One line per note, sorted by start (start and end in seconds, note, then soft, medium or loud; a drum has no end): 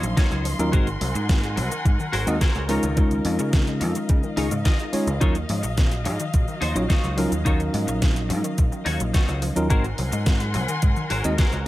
0.00 0.14 A#1 medium
0.00 0.55 F#3 medium
0.00 0.70 F#3 medium
0.00 0.08 F#3 medium
0.00 0.56 C#4 medium
0.00 0.56 D#4 medium
0.00 0.56 A#4 medium
0.00 0.70 D#5 medium
0.00 0.56 F5 medium
0.00 0.70 F5 medium
0.00 2.65 C6 medium
0.00 closed hi-hat medium
0.00 cabasa medium
0.17 0.22 A#3 medium
0.17 0.45 D#4 medium
0.17 0.45 F4 medium
0.17 0.45 F#4 medium
0.17 0.46 C#5 loud
0.17 kick loud
0.17 snare loud
0.17 closed hi-hat medium
0.17 cabasa medium
0.31 0.53 C#2 medium
0.31 0.40 F#3 medium
0.31 cabasa soft
0.45 0.54 F3 loud
0.45 open hi-hat loud
0.59 0.70 D#2 medium
0.59 0.64 D#3 medium
0.59 0.70 F#3 medium
0.59 0.70 C#4 medium
0.59 0.70 D#4 medium
0.59 0.70 F4 medium
0.59 0.70 A#4 loud
0.59 closed hi-hat medium
0.59 cabasa medium
0.72 0.95 G#1 loud
0.72 0.82 C3 medium
0.72 0.86 G#3 loud
0.72 0.86 C4 medium
0.72 0.87 D#4 medium
0.72 0.87 F#4 loud
0.72 0.87 F#4 medium
0.72 0.87 G#4 medium
0.72 5.18 A#4 medium
0.72 0.87 A#4 loud
0.72 0.88 C5 loud
0.72 2.67 F#5 medium
0.72 2.67 G#5 medium
0.72 kick loud
0.72 closed hi-hat medium
0.72 cabasa medium
0.87 0.96 D#3 loud
0.87 closed hi-hat soft
0.87 cabasa soft
1.01 1.12 C2 loud
1.01 1.14 F#3 medium
1.01 muted clean electric guitar stroke soft
1.01 open hi-hat loud
1.14 1.59 G#2 medium
1.14 1.20 G#3 medium
1.14 muted clean electric guitar stroke medium
1.14 closed hi-hat medium
1.14 cabasa medium
1.28 1.42 A#3 medium
1.28 muted clean electric guitar stroke soft
1.28 kick loud
1.28 snare loud
1.28 closed hi-hat medium
1.28 cabasa medium
1.43 1.52 G#3 medium
1.43 closed hi-hat soft
1.43 cabasa soft
1.56 1.68 C2 loud
1.56 1.66 F#3 loud
1.56 muted clean electric guitar stroke medium
1.56 open hi-hat loud
1.71 1.80 D#3 loud
1.71 muted clean electric guitar stroke soft
1.71 closed hi-hat medium
1.71 cabasa medium
1.85 1.96 G#2 medium
1.85 1.94 C3 medium
1.85 kick loud
1.85 closed hi-hat medium
1.85 cabasa medium
2.00 2.08 D#3 loud
2.00 cabasa soft
2.12 2.24 G#1 medium
2.12 2.22 F#3 medium
2.12 2.27 F#4 loud
2.12 2.27 G#4 loud
2.12 2.27 A#4 loud
2.12 2.28 C5 loud
2.12 open hi-hat loud
2.27 2.38 D#2 medium
2.27 2.35 G#3 medium
2.27 2.33 G#3 medium
2.27 2.36 C4 medium
2.27 2.36 D#4 medium
2.27 2.36 F#4 medium
2.27 2.36 D#5 medium
2.27 closed hi-hat medium
2.27 cabasa medium
2.41 2.47 A#3 medium
2.41 2.69 F#4 medium
2.41 2.69 G#4 medium
2.41 2.69 A#4 medium
2.41 2.70 C5 loud
2.41 kick loud
2.41 snare loud
2.41 closed hi-hat medium
2.41 cabasa medium
2.55 2.77 C#2 medium
2.55 2.64 G#3 medium
2.55 cabasa soft
2.68 2.78 F3 loud
2.68 2.83 G#3 medium
2.68 2.83 C#4 medium
2.68 3.14 D#4 medium
2.68 2.83 D#4 medium
2.68 3.14 F4 medium
2.68 2.83 F4 medium
2.68 3.15 A#4 medium
2.68 2.83 A#4 loud
2.68 3.15 C#5 medium
2.68 9.66 D#5 medium
2.68 9.66 F5 medium
2.68 open hi-hat loud
2.83 2.94 C#2 medium
2.83 2.89 D#3 medium
2.83 closed hi-hat soft
2.83 cabasa medium
2.96 3.19 C#2 loud
2.96 3.06 C#3 medium
2.96 4.34 G#3 medium
2.96 4.34 C#4 medium
2.96 4.35 D#4 medium
2.96 4.35 F4 medium
2.96 4.35 A#4 medium
2.96 kick loud
2.96 closed hi-hat medium
2.96 cabasa medium
3.11 3.20 D#3 loud
3.11 closed hi-hat soft
3.11 cabasa soft
3.25 3.36 F2 loud
3.25 3.39 F3 medium
3.25 muted clean electric guitar stroke soft
3.25 open hi-hat loud
3.39 3.83 C#3 medium
3.39 3.45 G#3 medium
3.39 muted clean electric guitar stroke medium
3.39 closed hi-hat medium
3.39 cabasa medium
3.53 3.67 A#3 medium
3.53 muted clean electric guitar stroke soft
3.53 kick loud
3.53 snare loud
3.53 closed hi-hat medium
3.53 cabasa medium
3.67 3.76 G#3 medium
3.67 closed hi-hat soft
3.67 cabasa soft
3.81 3.92 F2 loud
3.81 3.90 F3 loud
3.81 muted clean electric guitar stroke medium
3.81 open hi-hat loud
3.95 4.04 D#3 loud
3.95 muted clean electric guitar stroke soft
3.95 closed hi-hat medium
3.95 cabasa medium
4.09 4.18 C#3 medium
4.09 4.21 C#3 medium
4.09 kick loud
4.09 closed hi-hat medium
4.09 cabasa medium
4.23 4.32 D#3 loud
4.23 cabasa soft
4.37 4.48 C#2 medium
4.37 4.43 D#3 medium
4.37 4.46 G#3 medium
4.37 4.46 C#4 medium
4.37 4.46 D#4 medium
4.37 4.51 D#4 loud
4.37 4.46 F4 medium
4.37 4.52 F4 loud
4.37 4.46 G#4 medium
4.37 4.52 A#4 loud
4.37 4.52 C#5 loud
4.37 open hi-hat loud
4.51 4.62 G#2 medium
4.51 4.60 C#3 loud
4.51 closed hi-hat medium
4.51 cabasa medium
4.65 4.74 D#3 medium
4.65 4.93 D#4 medium
4.65 4.93 F4 medium
4.65 4.94 A#4 medium
4.65 4.94 D#5 loud
4.65 kick loud
4.65 snare loud
4.65 closed hi-hat medium
4.65 cabasa medium
4.79 4.88 G#3 medium
4.79 cabasa soft
4.93 5.02 D#3 medium
4.93 5.07 G#3 loud
4.93 5.07 C#4 medium
4.93 5.07 D#4 medium
4.93 5.07 F4 medium
4.93 5.07 C#5 loud
4.93 muted picked electric bass stroke soft
4.93 open hi-hat loud
5.07 5.18 C#2 loud
5.07 5.13 G#3 medium
5.07 closed hi-hat soft
5.07 cabasa medium
5.20 5.44 D#2 loud
5.20 5.30 C#3 medium
5.20 5.34 F#3 medium
5.20 9.66 F#3 medium
5.20 5.35 C#4 medium
5.20 5.35 D#4 loud
5.20 5.35 D#4 medium
5.20 5.36 F4 loud
5.20 5.35 F4 medium
5.20 5.36 F#4 medium
5.20 5.35 A#4 loud
5.20 5.36 C#5 loud
5.20 kick loud
5.20 closed hi-hat medium
5.20 cabasa medium
5.35 5.44 D#3 loud
5.35 closed hi-hat soft
5.35 cabasa soft
5.49 5.61 G#2 loud
5.49 5.63 F3 medium
5.49 muted clean electric guitar stroke soft
5.49 open hi-hat loud
5.63 6.07 A#1 medium
5.63 5.69 F#3 medium
5.63 muted clean electric guitar stroke medium
5.63 closed hi-hat medium
5.63 cabasa medium
5.76 5.91 A#3 medium
5.76 muted clean electric guitar stroke soft
5.76 kick loud
5.76 snare loud
5.76 closed hi-hat medium
5.76 cabasa medium
5.92 6.00 F#3 medium
5.92 closed hi-hat soft
5.92 cabasa soft
6.05 6.17 G#2 loud
6.05 6.14 F3 loud
6.05 muted clean electric guitar stroke medium
6.05 open hi-hat loud
6.19 6.29 D#3 loud
6.19 muted clean electric guitar stroke soft
6.19 closed hi-hat medium
6.19 cabasa medium
6.34 6.45 A#1 medium
6.34 6.43 C#3 medium
6.34 kick loud
6.34 closed hi-hat medium
6.34 cabasa medium
6.48 6.57 D#3 loud
6.48 cabasa soft
6.61 6.73 D#2 medium
6.61 6.71 F3 medium
6.61 6.75 D#4 loud
6.61 6.76 F4 loud
6.61 6.76 F#4 loud
6.61 6.76 C5 loud
6.61 open hi-hat loud
6.75 6.87 A#1 medium
6.75 6.84 F#3 medium
6.75 6.81 F#3 medium
6.75 6.84 C#4 medium
6.75 6.84 D#4 medium
6.75 6.84 F4 medium
6.75 6.84 C#5 medium
6.75 closed hi-hat medium
6.75 cabasa medium
6.89 6.95 A#3 medium
6.89 7.17 D#4 medium
6.89 7.18 F4 medium
6.89 7.18 F#4 medium
6.89 7.18 C#5 loud
6.89 kick loud
6.89 snare loud
6.89 closed hi-hat medium
6.89 cabasa medium
7.04 7.26 C#2 medium
7.04 7.13 F#3 medium
7.04 cabasa soft
7.17 7.27 F3 loud
7.17 7.31 F#3 loud
7.17 7.31 C#4 medium
7.17 7.31 D#4 medium
7.17 7.31 F4 medium
7.17 7.32 A#4 loud
7.17 open hi-hat loud
7.32 7.43 D#2 medium
7.32 7.37 D#3 medium
7.32 closed hi-hat soft
7.32 cabasa medium
7.45 7.68 D#2 loud
7.45 7.55 C#3 medium
7.45 9.52 F#3 medium
7.45 9.53 C#4 medium
7.45 7.60 D#4 loud
7.45 9.53 D#4 medium
7.45 7.60 F4 loud
7.45 7.60 F#4 loud
7.45 9.53 A#4 medium
7.45 7.60 C#5 loud
7.45 9.53 F5 medium
7.45 kick loud
7.45 closed hi-hat medium
7.45 cabasa medium
7.60 7.69 D#3 loud
7.60 closed hi-hat soft
7.60 cabasa soft
7.73 7.85 G#2 loud
7.73 7.87 F3 medium
7.73 muted clean electric guitar stroke soft
7.73 open hi-hat loud
7.87 8.32 A#1 medium
7.87 7.93 F#3 medium
7.87 muted clean electric guitar stroke medium
7.87 closed hi-hat medium
7.87 cabasa medium
8.02 8.15 A#3 medium
8.02 muted clean electric guitar stroke soft
8.02 kick loud
8.02 snare loud
8.02 closed hi-hat medium
8.02 cabasa medium
8.16 8.25 F#3 medium
8.16 closed hi-hat soft
8.16 cabasa soft
8.29 8.41 G#2 loud
8.29 8.39 F3 loud
8.29 muted clean electric guitar stroke medium
8.29 open hi-hat loud
8.43 8.53 D#3 loud
8.43 muted clean electric guitar stroke soft
8.43 closed hi-hat medium
8.43 cabasa medium
8.58 8.69 A#1 medium
8.58 8.67 C#3 medium
8.58 kick loud
8.58 closed hi-hat medium
8.58 cabasa medium
8.72 8.81 D#3 loud
8.72 cabasa soft
8.85 8.97 D#2 medium
8.85 8.95 F3 medium
8.85 9.00 D#4 loud
8.85 9.00 F4 loud
8.85 9.00 F#4 loud
8.85 9.01 C#5 loud
8.85 open hi-hat loud
9.00 9.11 A#1 loud
9.00 9.05 F#3 medium
9.00 closed hi-hat medium
9.00 cabasa medium
9.13 9.19 A#3 medium
9.13 9.42 D#4 medium
9.13 9.42 F4 medium
9.13 9.42 F#4 medium
9.13 9.43 C#5 loud
9.13 kick loud
9.13 snare loud
9.13 closed hi-hat medium
9.13 cabasa medium
9.28 9.50 C#2 medium
9.28 9.37 F#3 medium
9.28 cabasa soft
9.42 9.51 F3 loud
9.42 open hi-hat loud
9.56 9.67 D#2 medium
9.56 9.62 D#3 medium
9.56 9.67 F#3 medium
9.56 9.67 C#4 medium
9.56 9.67 D#4 medium
9.56 9.67 F4 medium
9.56 9.67 A#4 loud
9.56 closed hi-hat medium
9.56 cabasa medium
9.70 9.92 G#1 loud
9.70 9.79 C3 medium
9.70 9.83 G#3 loud
9.70 9.84 C4 medium
9.70 9.84 D#4 medium
9.70 9.84 F#4 loud
9.70 9.84 F#4 medium
9.70 9.84 G#4 loud
9.70 9.84 A#4 loud
9.70 11.68 A#4 medium
9.70 9.85 A#4 loud
9.70 9.85 C5 loud
9.70 11.65 F#5 medium
9.70 11.65 G#5 medium
9.70 11.65 C6 medium
9.70 kick loud
9.70 closed hi-hat medium
9.70 cabasa medium
9.84 9.93 D#3 loud
9.84 closed hi-hat soft
9.84 cabasa soft
9.98 10.09 C2 loud
9.98 10.11 F#3 medium
9.98 muted clean electric guitar stroke soft
9.98 open hi-hat loud
10.12 10.56 G#2 medium
10.12 10.18 G#3 medium
10.12 muted clean electric guitar stroke medium
10.12 closed hi-hat medium
10.12 cabasa medium
10.26 10.39 A#3 medium
10.26 muted clean electric guitar stroke soft
10.26 kick loud
10.26 snare loud
10.26 closed hi-hat medium
10.26 cabasa medium
10.40 10.49 G#3 medium
10.40 closed hi-hat soft
10.40 cabasa soft
10.54 10.66 C2 loud
10.54 10.63 F#3 loud
10.54 muted clean electric guitar stroke medium
10.54 open hi-hat loud
10.68 10.77 D#3 loud
10.68 muted clean electric guitar stroke soft
10.68 closed hi-hat medium
10.68 cabasa medium
10.82 10.94 G#2 medium
10.82 10.91 C3 medium
10.82 kick loud
10.82 closed hi-hat medium
10.82 cabasa medium
10.96 11.05 D#3 loud
10.96 cabasa soft
11.10 11.22 G#1 medium
11.10 11.19 F#3 medium
11.10 11.24 F#4 loud
11.10 11.25 G#4 loud
11.10 11.25 A#4 loud
11.10 11.25 C5 loud
11.10 open hi-hat loud
11.24 11.36 D#2 medium
11.24 11.33 G#3 medium
11.24 11.30 G#3 medium
11.24 11.33 C4 medium
11.24 11.33 D#4 medium
11.24 11.33 F#4 medium
11.24 11.33 D#5 medium
11.24 closed hi-hat medium
11.24 cabasa medium
11.38 11.44 A#3 medium
11.38 11.66 F#4 medium
11.38 11.66 G#4 medium
11.38 11.66 A#4 medium
11.38 11.67 C5 loud
11.38 kick loud
11.38 snare loud
11.38 closed hi-hat medium
11.38 cabasa medium
11.52 11.68 C#2 medium
11.52 11.61 G#3 medium
11.52 cabasa soft